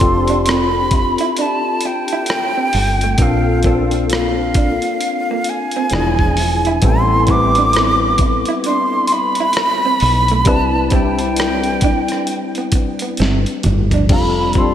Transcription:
0.00 1.15 F1 medium
0.00 3.18 C4 medium
0.00 3.19 D4 medium
0.00 3.20 F4 medium
0.00 0.02 G4 medium
0.00 1.59 G4 medium
0.00 0.03 A4 medium
0.00 1.59 A4 medium
0.00 3.20 C5 medium
0.00 0.51 C6 medium
0.00 muted clean electric guitar stroke soft
0.00 kick medium
0.00 closed hi-hat medium
0.28 0.41 D4 medium
0.28 closed hi-hat soft
0.46 0.65 C4 medium
0.46 1.43 B5 medium
0.46 cross-stick loud
0.46 closed hi-hat medium
0.91 muted clean electric guitar stroke soft
0.91 kick medium
0.91 closed hi-hat medium
1.18 1.32 E4 medium
1.18 closed hi-hat soft
1.37 1.56 D4 medium
1.37 closed hi-hat medium
1.41 1.88 A5 medium
1.81 closed hi-hat medium
1.85 3.24 G5 medium
1.85 muted clean electric guitar stroke soft
2.08 closed hi-hat soft
2.13 2.23 E4 medium
2.26 cross-stick medium
2.26 closed hi-hat medium
2.57 2.68 C4 medium
2.73 3.15 G1 medium
2.73 open hi-hat soft
2.77 muted clean electric guitar stroke soft
3.01 3.14 A3 medium
3.01 closed hi-hat soft
3.17 4.79 A#1 medium
3.17 3.58 A#3 medium
3.17 3.58 C4 medium
3.17 3.59 D4 medium
3.17 3.59 F4 medium
3.17 3.60 A4 medium
3.17 kick medium
3.17 closed hi-hat medium
3.22 3.38 A#3 medium
3.22 3.88 F5 medium
3.63 5.21 A#3 medium
3.63 5.21 C4 medium
3.63 5.22 D4 medium
3.63 5.22 F4 medium
3.63 5.23 A4 medium
3.63 kick medium
3.63 closed hi-hat medium
3.67 3.84 C4 medium
3.91 closed hi-hat soft
4.10 cross-stick loud
4.10 closed hi-hat medium
4.14 5.51 F5 medium
4.54 4.74 D4 medium
4.54 kick medium
4.54 closed hi-hat medium
4.82 closed hi-hat soft
5.01 closed hi-hat medium
5.31 5.41 A#3 medium
5.44 closed hi-hat medium
5.48 6.84 G#5 medium
5.48 muted clean electric guitar stroke soft
5.71 closed hi-hat soft
5.76 5.87 C4 medium
5.90 6.79 E1 loud
5.90 6.71 F3 medium
5.90 6.71 B3 medium
5.90 6.72 D4 medium
5.90 6.72 E4 medium
5.90 6.72 G#4 medium
5.90 cross-stick medium
5.90 closed hi-hat medium
5.95 6.11 D4 medium
6.19 kick medium
6.37 muted clean electric guitar stroke soft
6.37 open hi-hat soft
6.65 6.77 E4 medium
6.65 closed hi-hat soft
6.81 8.43 A1 medium
6.81 7.22 G3 medium
6.81 7.01 A3 medium
6.81 7.22 B3 medium
6.81 7.23 C4 medium
6.81 7.23 E4 medium
6.81 7.23 A4 medium
6.81 kick loud
6.81 closed hi-hat medium
6.86 7.32 C6 medium
7.26 8.84 G3 medium
7.26 8.85 B3 medium
7.26 8.85 C4 medium
7.26 8.86 E4 medium
7.26 8.86 B4 medium
7.26 kick medium
7.26 closed hi-hat medium
7.30 8.42 D6 loud
7.30 muted clean electric guitar stroke soft
7.55 7.69 D4 medium
7.55 closed hi-hat soft
7.73 7.93 C4 medium
7.73 cross-stick loud
7.73 closed hi-hat medium
8.18 muted clean electric guitar stroke soft
8.18 kick medium
8.18 closed hi-hat medium
8.45 8.59 E4 medium
8.45 closed hi-hat soft
8.64 8.83 D4 medium
8.64 9.14 C6 medium
8.64 closed hi-hat medium
9.07 closed hi-hat medium
9.12 10.49 B5 loud
9.12 muted clean electric guitar stroke soft
9.35 closed hi-hat soft
9.40 9.51 E4 medium
9.53 cross-stick medium
9.53 closed hi-hat medium
9.86 9.96 C4 medium
10.00 10.47 B1 medium
10.00 muted clean electric guitar stroke soft
10.00 open hi-hat soft
10.28 10.42 A3 medium
10.28 closed hi-hat soft
10.45 12.06 C2 loud
10.45 10.85 G3 medium
10.45 10.65 B3 medium
10.45 10.86 C4 medium
10.45 10.86 D4 medium
10.45 10.86 E4 medium
10.45 10.87 B4 medium
10.45 10.92 A5 medium
10.45 kick loud
10.45 closed hi-hat medium
10.90 12.48 G3 medium
10.90 12.48 C4 medium
10.90 11.10 C4 medium
10.90 12.49 D4 medium
10.90 12.49 E4 medium
10.90 12.50 D5 medium
10.90 12.70 G5 medium
10.90 kick medium
10.90 closed hi-hat soft
11.19 closed hi-hat soft
11.36 cross-stick loud
11.36 closed hi-hat medium
11.63 closed hi-hat soft
11.81 12.01 D4 medium
11.81 kick medium
11.81 closed hi-hat medium
12.08 cross-stick soft
12.08 closed hi-hat soft
12.27 closed hi-hat medium
12.55 12.68 B3 medium
12.55 closed hi-hat soft
12.72 muted clean electric guitar stroke soft
12.72 kick medium
12.72 closed hi-hat medium
12.99 13.13 B3 medium
12.99 closed hi-hat soft
13.17 13.44 G1 medium
13.17 13.37 C4 medium
13.17 closed hi-hat medium
13.22 snare soft
13.46 closed hi-hat soft
13.63 14.10 G1 medium
13.63 muted clean electric guitar stroke soft
13.63 closed hi-hat medium
13.63 mid tom medium
13.91 14.05 D4 medium
13.91 closed hi-hat soft
13.91 floor tom medium
14.08 14.74 F1 loud
14.08 14.49 G3 medium
14.08 14.49 C4 medium
14.08 14.50 D4 medium
14.08 14.50 F4 medium
14.08 14.29 F4 medium
14.08 14.50 A4 medium
14.08 kick loud
14.08 crash medium
14.13 14.60 B5 medium
14.53 14.74 G3 medium
14.53 14.74 C4 medium
14.53 14.74 D4 medium
14.53 14.74 F4 medium
14.53 kick medium
14.53 closed hi-hat soft
14.57 14.74 A4 medium
14.57 14.74 C6 medium
14.57 muted clean electric guitar stroke soft

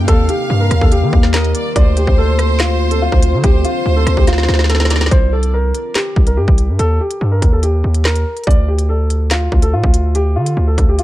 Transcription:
0.00 1.72 A#3 medium
0.08 0.28 D#2 loud
0.08 1.74 D#3 medium
0.08 1.74 G4 medium
0.08 0.28 A4 loud
0.08 1.30 F5 loud
0.08 kick loud
0.08 closed hi-hat medium
0.29 0.59 G4 medium
0.29 closed hi-hat medium
0.50 0.70 G2 loud
0.60 0.80 A#4 medium
0.71 0.81 D#2 loud
0.71 cross-stick medium
0.71 closed hi-hat medium
0.81 1.04 D#2 loud
0.81 0.91 A4 medium
0.81 kick loud
0.92 1.31 G4 medium
0.92 closed hi-hat medium
1.02 1.12 D#3 loud
1.13 1.53 D#2 loud
1.13 kick loud
1.23 snare medium
1.34 1.73 A#4 medium
1.34 1.54 D#5 medium
1.34 snare loud
1.34 clap medium
1.34 closed hi-hat medium
1.44 closed hi-hat medium
1.55 1.75 D5 medium
1.55 closed hi-hat loud
1.75 2.06 D2 loud
1.75 5.08 D3 medium
1.75 5.08 C4 medium
1.75 5.08 F4 medium
1.75 3.39 C5 loud
1.75 1.96 D5 loud
1.75 kick loud
1.75 closed hi-hat medium
1.97 2.17 G4 medium
1.97 closed hi-hat medium
2.07 3.08 D2 loud
2.07 kick medium
2.18 2.57 A4 medium
2.39 cross-stick medium
2.39 closed hi-hat medium
2.60 2.89 F4 medium
2.60 snare loud
2.60 clap loud
2.60 closed hi-hat medium
2.91 3.01 A4 medium
2.91 closed hi-hat medium
3.02 3.41 F4 medium
3.12 3.35 D2 loud
3.12 kick loud
3.22 closed hi-hat loud
3.33 3.43 D3 loud
3.43 3.64 D2 loud
3.43 3.63 G4 loud
3.43 4.86 C5 loud
3.43 kick loud
3.43 closed hi-hat medium
3.64 3.94 F4 medium
3.64 closed hi-hat medium
3.86 4.06 D2 loud
3.96 4.16 A4 medium
4.07 4.17 D2 loud
4.07 cross-stick medium
4.07 closed hi-hat medium
4.17 4.47 D2 loud
4.17 4.27 G4 medium
4.17 kick medium
4.27 4.67 F4 medium
4.27 snare medium
4.27 closed hi-hat medium
4.33 snare medium
4.38 snare medium
4.43 snare medium
4.48 5.09 D2 loud
4.48 snare medium
4.54 snare medium
4.59 snare medium
4.64 snare medium
4.69 5.09 A4 medium
4.69 snare medium
4.69 closed hi-hat medium
4.75 snare medium
4.80 snare loud
4.85 snare medium
4.90 5.10 D5 medium
4.90 snare loud
4.90 closed hi-hat loud
4.96 snare medium
5.01 snare loud
5.06 snare loud
5.11 5.72 C2 loud
5.11 5.31 C5 loud
5.11 kick loud
5.11 closed hi-hat medium
5.33 5.52 A4 medium
5.43 closed hi-hat medium
5.54 5.93 A#4 medium
5.75 closed hi-hat medium
5.95 6.25 G4 medium
5.95 snare loud
5.95 clap medium
5.95 closed hi-hat medium
6.16 6.39 C2 loud
6.16 kick medium
6.27 6.37 A#4 medium
6.27 closed hi-hat medium
6.37 6.47 G2 loud
6.37 6.77 G4 medium
6.48 6.70 C2 loud
6.48 kick loud
6.58 closed hi-hat medium
6.69 6.79 G2 loud
6.79 6.99 D#2 loud
6.79 6.99 A4 loud
6.79 closed hi-hat medium
7.00 7.30 G4 medium
7.11 closed hi-hat medium
7.21 7.41 G2 loud
7.32 7.51 A#4 medium
7.42 7.82 D#2 loud
7.42 kick medium
7.42 closed hi-hat medium
7.52 7.62 A4 medium
7.63 8.03 G4 medium
7.63 closed hi-hat medium
7.84 8.24 D#2 loud
7.94 closed hi-hat medium
8.05 8.45 A#4 medium
8.05 snare loud
8.05 clap medium
8.15 closed hi-hat medium
8.37 closed hi-hat soft
8.44 9.48 D2 loud
8.44 8.67 D5 loud
8.44 kick loud
8.44 closed hi-hat medium
8.51 closed hi-hat medium
8.68 8.88 G4 medium
8.79 closed hi-hat medium
8.89 9.28 A4 medium
9.10 closed hi-hat medium
9.31 9.61 F4 medium
9.31 snare loud
9.31 clap medium
9.31 closed hi-hat medium
9.52 9.74 D2 loud
9.52 kick loud
9.62 9.72 A4 medium
9.62 closed hi-hat medium
9.73 9.83 A2 loud
9.73 10.13 F4 medium
9.84 10.37 D2 loud
9.84 kick loud
9.94 closed hi-hat medium
10.15 10.35 G4 loud
10.15 closed hi-hat medium
10.36 10.56 D3 loud
10.36 10.65 F4 medium
10.46 closed hi-hat medium
10.57 10.77 D2 loud
10.67 10.87 A4 medium
10.78 10.98 D2 loud
10.78 kick medium
10.78 closed hi-hat medium
10.89 10.98 G4 medium
10.99 11.04 F4 medium
10.99 closed hi-hat medium

